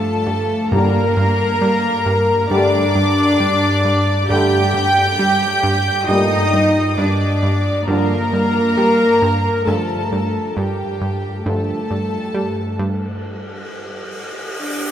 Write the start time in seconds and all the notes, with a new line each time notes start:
Already playing: G2 D3 F3 A3 A4 A5
0.27 G2
0.71 G2 D3 G3 A#3 G4 A#4 A#5
1.17 G2
1.62 G2 G3
2.06 G2
2.50 G2 D3 G3 A3 D4 G4 D5 D6
2.95 G2
3.40 G2
3.85 G2
4.29 G2 D3 G3 A3 G4 G5 G6
4.74 G2
5.19 G2 G3
5.64 G2
6.08 G2 A#2 G3 A3 D#4 G4 D#5 D#6
6.53 G2
6.98 G2 D4 D5 D6
7.43 G2
7.88 G2 D3 F3 A#3 D4 A#4 A#5
8.33 G2
8.77 G2 G3
9.22 G2
9.67 G2 D3 F3 A3 D4 A4 A5
10.12 G2
10.56 G2 G3 G4 G5
11.01 G2
11.46 G2 D3 F3 A3 D4 A4 A5, cymbal swell
11.91 G2
12.35 G2 G3
12.79 G2
14.59 D4 D6